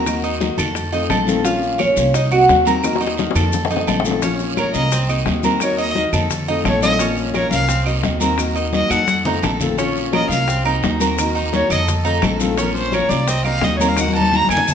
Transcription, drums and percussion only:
0.06 high bongo, high conga, long guiro, claves, maracas
0.23 high conga, maracas
0.40 high bongo, high conga, short guiro, maracas
0.58 high bongo, low conga, short guiro, claves, maracas
0.75 high bongo, high conga, long guiro, maracas
0.93 high bongo, high conga, maracas
1.10 high bongo, low bongo, high conga, short guiro, claves, maracas
1.27 high bongo, high conga, short guiro, maracas
1.44 high bongo, high conga, long guiro, maracas
1.62 high bongo, high conga, maracas
1.78 high bongo, high conga, short guiro, claves, maracas
1.96 high bongo, high conga, short guiro, maracas
2.14 high bongo, long guiro, maracas
2.31 high bongo, high conga, claves, maracas
2.48 high bongo, low bongo, high conga, short guiro, maracas
2.65 high conga, short guiro, maracas
2.83 high bongo, high conga, long guiro, claves, maracas
2.96 high bongo
3.01 high conga, maracas
3.07 high bongo
3.17 high bongo, high conga, short guiro, maracas
3.31 high bongo
3.35 low conga, short guiro, claves, maracas
3.53 low bongo, high conga, long guiro, maracas
3.65 low bongo
3.70 high conga, maracas
3.76 low bongo
3.87 low bongo, high conga, short guiro, claves, maracas
4.00 low bongo
4.05 high conga, short guiro, maracas
4.11 low bongo
4.22 high bongo, high conga, long guiro, maracas
4.39 high bongo, high conga, maracas
4.57 high bongo, high conga, short guiro, claves, maracas
4.74 high bongo, high conga, short guiro, maracas
4.91 high bongo, high conga, long guiro, maracas
5.09 high bongo, high conga, claves, maracas
5.26 high bongo, low bongo, high conga, short guiro, maracas
5.43 high conga, short guiro, maracas
5.60 high bongo, high conga, long guiro, claves, maracas
5.78 high conga, maracas
5.95 high bongo, high conga, short guiro, maracas
6.13 high bongo, low conga, short guiro, claves, maracas
6.30 high bongo, high conga, low conga, long guiro, maracas
6.48 high bongo, high conga, maracas
6.64 high bongo, low bongo, high conga, short guiro, claves, maracas
6.81 high bongo, high conga, short guiro, maracas
6.99 high bongo, high conga, long guiro, maracas
7.16 high bongo, high conga, maracas
7.34 high bongo, high conga, short guiro, claves, maracas
7.51 high bongo, high conga, short guiro, maracas
7.69 high bongo, high conga, long guiro, maracas
7.86 high bongo, high conga, claves, maracas
8.03 high bongo, low bongo, high conga, short guiro, maracas
8.20 high conga, short guiro, maracas
8.38 high bongo, long guiro, claves, maracas
8.55 high conga, maracas
8.73 high bongo, high conga, short guiro, maracas
8.90 high bongo, high conga, short guiro, claves, maracas
9.08 high bongo, high conga, long guiro, maracas
9.25 high bongo, low conga, maracas
9.43 high bongo, low bongo, short guiro, claves, maracas
9.60 high bongo, low conga, short guiro, maracas
9.78 high bongo, long guiro, maracas
9.96 high bongo, high conga, maracas
10.12 high bongo, high conga, short guiro, claves, maracas
10.30 high bongo, high conga, short guiro, maracas
10.48 high bongo, high conga, long guiro, maracas
10.66 high bongo, high conga, claves, maracas
10.83 high bongo, low bongo, high conga, short guiro, maracas
11.00 high conga, short guiro, maracas
11.18 high bongo, high conga, long guiro, claves, maracas
11.36 high conga, maracas
11.53 high bongo, high conga, short guiro, maracas
11.70 high bongo, low conga, short guiro, claves, maracas
11.88 high bongo, high conga, low conga, long guiro, maracas
12.05 high bongo, high conga, maracas
12.22 high bongo, low bongo, high conga, short guiro, claves, maracas
12.40 high bongo, high conga, short guiro, maracas
12.57 high bongo, high conga, long guiro, maracas
12.75 high bongo, high conga, maracas
12.92 high bongo, high conga, short guiro, claves, maracas
13.09 high bongo, high conga, short guiro, maracas
13.27 high bongo, high conga, long guiro, maracas
13.45 high bongo, high conga, claves, maracas
13.61 high bongo, low bongo, high conga, short guiro, maracas
13.80 high conga, short guiro, maracas
13.97 high bongo, high conga, long guiro, claves, maracas
14.08 high conga
14.15 maracas
14.21 high conga
14.32 high bongo, high conga, short guiro, maracas
14.45 high bongo, high conga
14.50 short guiro, claves, maracas
14.57 low conga
14.68 low conga, long guiro, maracas

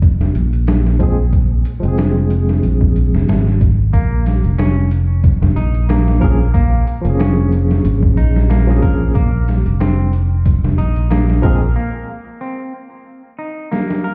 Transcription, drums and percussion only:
0.02 kick, closed hi-hat
0.21 snare
0.35 closed hi-hat
0.53 closed hi-hat
0.67 snare, closed hi-hat
0.86 snare
1.00 kick, closed hi-hat
1.33 kick, closed hi-hat
1.65 closed hi-hat
1.83 closed hi-hat
1.98 snare, closed hi-hat
2.30 closed hi-hat
2.49 snare
2.63 closed hi-hat
2.81 kick
2.96 closed hi-hat
3.15 snare
3.29 snare, closed hi-hat
3.47 snare
3.61 kick, closed hi-hat
3.94 kick, closed hi-hat
4.26 snare, closed hi-hat
4.44 closed hi-hat
4.59 snare, closed hi-hat
4.91 closed hi-hat
5.24 kick, closed hi-hat
5.42 snare
5.57 closed hi-hat
5.74 closed hi-hat
5.89 snare, closed hi-hat
6.08 snare
6.22 kick, closed hi-hat
6.54 kick, closed hi-hat
6.87 closed hi-hat
7.05 closed hi-hat
7.20 snare, closed hi-hat
7.52 closed hi-hat
7.71 snare
7.85 closed hi-hat
8.03 kick
8.17 closed hi-hat
8.36 snare
8.50 snare, closed hi-hat
8.69 snare
8.83 kick, closed hi-hat
9.15 kick, closed hi-hat
9.48 snare, closed hi-hat
9.66 closed hi-hat
9.80 snare, closed hi-hat
10.13 closed hi-hat
10.46 kick, closed hi-hat
10.64 snare
10.78 closed hi-hat
10.96 closed hi-hat
11.11 snare, closed hi-hat
11.29 snare
11.43 kick, closed hi-hat
13.73 snare
13.90 snare

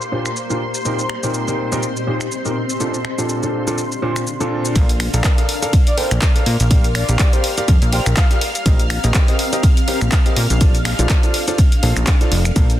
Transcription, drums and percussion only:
0.01 shaker
0.26 finger snap, shaker
0.36 shaker
0.50 shaker
0.75 shaker
0.85 shaker
0.99 shaker
1.10 finger snap
1.23 shaker
1.34 shaker
1.48 shaker
1.72 shaker
1.83 shaker
1.97 shaker
2.21 finger snap, shaker
2.32 shaker
2.45 shaker
2.70 shaker
2.80 shaker
2.94 shaker
3.05 finger snap
3.19 shaker
3.29 shaker
3.43 shaker
3.67 shaker
3.78 shaker
3.92 shaker
4.16 finger snap, shaker
4.27 shaker
4.41 shaker
4.65 shaker
4.76 kick, closed hi-hat, ride, shaker
4.89 closed hi-hat, shaker
5.00 finger snap, open hi-hat, ride
5.14 closed hi-hat, shaker
5.24 kick, snare, clap, closed hi-hat, ride, shaker
5.38 snare, closed hi-hat, shaker
5.49 open hi-hat
5.63 closed hi-hat, shaker
5.73 kick, closed hi-hat, ride, shaker
5.87 closed hi-hat, shaker
5.97 open hi-hat, ride
6.11 finger snap, closed hi-hat, shaker
6.22 kick, snare, clap, closed hi-hat, ride, shaker
6.36 snare, closed hi-hat, shaker
6.46 snare, open hi-hat, ride
6.60 closed hi-hat, shaker
6.71 kick, closed hi-hat, ride, shaker
6.84 closed hi-hat, shaker
6.95 finger snap, open hi-hat, ride
7.09 closed hi-hat, shaker
7.19 kick, snare, clap, closed hi-hat, ride, shaker
7.33 closed hi-hat, ride, shaker
7.44 open hi-hat, ride
7.58 closed hi-hat, shaker
7.68 kick, closed hi-hat, ride, shaker
7.82 closed hi-hat, shaker
7.92 open hi-hat, ride
8.06 finger snap, closed hi-hat, shaker
8.17 kick, snare, clap, closed hi-hat, ride, shaker
8.31 snare, closed hi-hat, shaker
8.41 snare, open hi-hat, ride
8.55 closed hi-hat, shaker
8.66 kick, closed hi-hat, ride, shaker
8.79 closed hi-hat, shaker
8.90 finger snap, open hi-hat, ride
9.04 closed hi-hat, shaker
9.14 kick, snare, clap, closed hi-hat, ride, shaker
9.28 snare, closed hi-hat, shaker
9.39 open hi-hat
9.53 closed hi-hat, shaker
9.63 kick, closed hi-hat, ride, shaker
9.77 closed hi-hat, shaker
9.88 open hi-hat, ride
10.01 finger snap, closed hi-hat, shaker
10.12 kick, snare, clap, closed hi-hat, ride, shaker
10.26 snare, closed hi-hat, shaker
10.36 snare, open hi-hat, ride
10.50 closed hi-hat, shaker
10.61 kick, closed hi-hat, ride, shaker
10.75 closed hi-hat, shaker
10.85 finger snap, snare, open hi-hat, ride
10.99 closed hi-hat, shaker
11.09 kick, snare, clap, closed hi-hat, ride, shaker
11.23 closed hi-hat, ride, shaker
11.34 open hi-hat, ride
11.48 closed hi-hat, shaker
11.58 kick, closed hi-hat, ride, shaker
11.72 closed hi-hat, shaker
11.83 open hi-hat, ride
11.97 finger snap, closed hi-hat, shaker
12.07 kick, snare, clap, closed hi-hat, ride, shaker
12.21 snare, closed hi-hat, shaker
12.32 snare, open hi-hat, ride
12.45 finger snap, closed hi-hat, shaker
12.56 kick, closed hi-hat, ride, shaker
12.70 closed hi-hat, shaker

